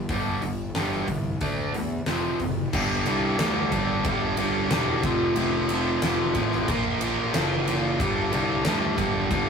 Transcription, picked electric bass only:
0.09 0.35 G1 medium
0.42 0.68 G1 medium
0.75 1.01 G1 medium
1.09 1.35 C2 medium
1.41 1.67 D2 medium
1.73 1.99 E2 medium
2.07 2.33 F1 medium
2.40 2.66 F#1 medium
2.74 3.04 G1 loud
3.06 3.37 C2 medium
3.39 3.69 D2 medium
3.72 4.03 G1 medium
4.05 4.35 G1 loud
4.37 4.68 G1 medium
4.69 5.00 E1 medium
5.04 5.34 F1 medium
5.36 5.98 F1 loud
6.03 6.33 F1 medium
6.35 6.68 A1 medium
6.68 7.30 A#1 loud
7.35 7.96 F#1 medium
7.99 8.30 G1 loud
8.34 8.63 C2 medium
8.65 8.96 D2 loud
8.99 9.29 G1 medium
9.31 9.49 G1 loud

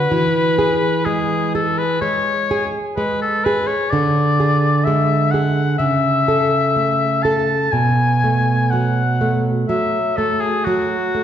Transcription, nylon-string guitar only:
0.00 0.11 F#4 medium
0.11 1.98 E3 medium
0.59 1.35 G#4 medium
1.06 1.82 G#3 medium
1.55 2.31 G#4 medium
2.02 2.78 G#3 medium
2.51 3.26 G#4 medium
2.98 3.73 G#3 medium
3.46 3.92 G#4 medium
3.93 5.76 D3 medium
4.40 5.14 G#4 medium
4.87 5.61 G#3 medium
5.34 5.80 G#4 medium
5.79 7.69 C#3 medium
6.28 7.05 A4 medium
6.76 7.53 A3 medium
7.25 7.73 A4 medium
7.73 9.64 B2 medium
8.24 9.01 A3 medium
8.73 9.50 F#3 medium
9.21 9.98 A3 medium
9.69 10.46 F#3 medium
10.18 10.95 A3 medium
10.67 11.24 F#3 medium
11.15 11.24 A3 medium

